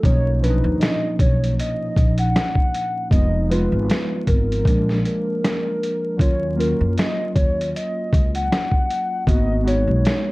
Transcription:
0.02 0.60 B1 loud
0.02 0.34 F3 medium
0.02 0.34 A#3 medium
0.02 0.34 C#4 medium
0.02 0.35 D#4 medium
0.02 0.39 C#5 loud
0.02 kick loud
0.02 closed hi-hat medium
0.40 1.60 A#2 medium
0.40 1.59 F3 medium
0.40 1.60 C#4 medium
0.40 0.50 D4 medium
0.40 0.77 B4 medium
0.40 closed hi-hat medium
0.50 1.64 D#4 medium
0.64 0.80 D#2 loud
0.80 1.15 D#5 medium
0.80 snare loud
0.80 closed hi-hat medium
1.19 1.55 B1 medium
1.19 1.54 C#5 medium
1.19 kick medium
1.19 closed hi-hat medium
1.44 closed hi-hat soft
1.59 2.15 D#5 medium
1.59 closed hi-hat medium
1.96 2.32 A#1 medium
1.96 kick loud
1.96 closed hi-hat medium
2.18 3.08 F#5 medium
2.18 closed hi-hat medium
2.36 snare loud
2.36 closed hi-hat medium
2.55 kick medium
2.75 closed hi-hat medium
3.10 3.67 F1 medium
3.10 3.41 F3 medium
3.10 3.42 G#3 medium
3.10 3.42 B3 medium
3.10 3.43 D#4 medium
3.10 3.46 D#5 medium
3.10 kick loud
3.10 closed hi-hat medium
3.49 4.63 F3 medium
3.49 4.64 G#3 medium
3.49 4.66 B3 medium
3.49 4.66 F4 medium
3.49 4.23 B4 medium
3.49 closed hi-hat medium
3.72 3.87 G#1 medium
3.90 snare loud
3.90 closed hi-hat medium
4.27 4.63 G#1 medium
4.27 5.00 A#4 medium
4.27 kick medium
4.27 closed hi-hat medium
4.52 closed hi-hat soft
4.64 5.01 A#1 loud
4.64 5.89 F3 medium
4.64 5.89 G#3 medium
4.64 5.90 A#3 medium
4.64 5.91 D4 medium
4.64 kick loud
4.64 closed hi-hat medium
4.89 snare soft
5.05 6.16 A#4 medium
5.05 closed hi-hat medium
5.44 snare loud
5.44 closed hi-hat medium
5.83 closed hi-hat medium
6.17 6.75 D#2 loud
6.17 6.49 F#3 medium
6.17 6.49 A#3 medium
6.17 6.50 C#4 medium
6.17 6.50 F4 medium
6.17 6.54 C#5 loud
6.17 kick loud
6.21 closed hi-hat medium
6.56 7.75 F#3 medium
6.56 7.75 A#3 medium
6.56 7.76 C#4 medium
6.56 7.76 F4 medium
6.56 6.93 A#4 medium
6.60 closed hi-hat medium
6.81 6.96 F#2 medium
6.98 7.32 D#5 medium
6.98 snare loud
6.98 closed hi-hat medium
7.35 7.71 D#2 medium
7.35 7.69 C#5 medium
7.35 kick medium
7.35 closed hi-hat medium
7.61 closed hi-hat soft
7.76 8.31 D#5 medium
7.76 closed hi-hat medium
8.13 8.48 C#2 medium
8.13 kick loud
8.13 closed hi-hat medium
8.35 9.24 F#5 medium
8.35 closed hi-hat medium
8.52 snare loud
8.52 closed hi-hat medium
8.71 kick medium
8.90 closed hi-hat medium
9.27 9.83 G#1 loud
9.27 9.57 A#3 medium
9.27 9.58 B3 medium
9.27 9.58 D#4 medium
9.27 9.59 F#4 medium
9.27 9.62 D#5 loud
9.27 kick loud
9.27 closed hi-hat medium
9.63 10.32 G#3 medium
9.63 10.32 B3 medium
9.63 10.32 D#4 medium
9.63 10.32 F#4 medium
9.67 10.32 C#5 medium
9.67 closed hi-hat medium
9.88 10.03 B1 medium
10.05 snare loud
10.05 closed hi-hat medium

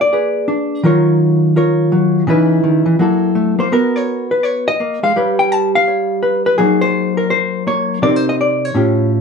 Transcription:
0.00 0.82 A#3 medium
0.00 0.84 D5 medium
0.13 0.82 G#4 medium
0.13 0.83 B4 soft
0.48 0.82 D4 medium
0.83 2.26 D#3 medium
0.83 1.91 F#3 medium
0.83 1.55 F4 medium
0.83 1.56 A#4 medium
0.83 1.56 C#5 medium
1.56 2.26 F4 medium
1.56 2.26 A#4 medium
1.56 2.27 C#5 medium
1.92 2.26 F#3 medium
2.27 2.97 C#3 medium
2.27 2.63 E3 medium
2.27 2.98 D#4 medium
2.27 2.99 E4 medium
2.27 2.99 B4 medium
2.63 2.85 D#3 medium
2.86 2.99 E3 medium
2.99 3.69 F#3 medium
2.99 3.35 A#3 soft
2.99 3.70 E4 soft
2.99 3.70 F#4 soft
2.99 3.60 A4 medium
3.35 3.58 A3 medium
3.59 3.71 A#3 medium
3.59 3.72 C5 medium
3.72 4.79 B3 medium
3.72 5.14 F#4 medium
3.72 4.31 A#4 loud
3.96 4.42 C#5 loud
4.31 4.79 B4 medium
4.43 4.66 C#5 loud
4.68 5.03 D#5 loud
4.80 5.03 A#3 medium
5.03 5.15 G#3 medium
5.03 5.39 F5 loud
5.16 6.59 G3 medium
5.16 6.21 B4 medium
5.16 5.87 C#5 medium
5.39 5.52 G5 loud
5.52 5.74 A5 loud
5.75 6.59 F5 loud
5.88 6.57 C#5 soft
6.23 6.45 B4 medium
6.46 6.58 B4 medium
6.58 8.01 F#3 medium
6.58 7.66 A#3 medium
6.58 8.01 D#4 medium
6.58 7.17 G#4 loud
6.81 7.29 C5 loud
7.17 7.66 A#4 medium
7.30 7.66 C5 loud
7.67 8.01 A#3 medium
7.67 8.03 C#5 medium
8.02 8.72 C3 medium
8.02 8.73 C4 medium
8.02 8.73 D#4 medium
8.02 8.73 A#4 medium
8.02 8.16 D5 loud
8.16 8.27 C5 medium
8.29 8.35 D#5 loud
8.41 8.65 D5 medium
8.65 9.21 C#5 medium
8.74 9.21 A2 medium
8.74 9.21 C#4 medium
8.74 9.21 F4 medium
8.74 9.21 G4 soft

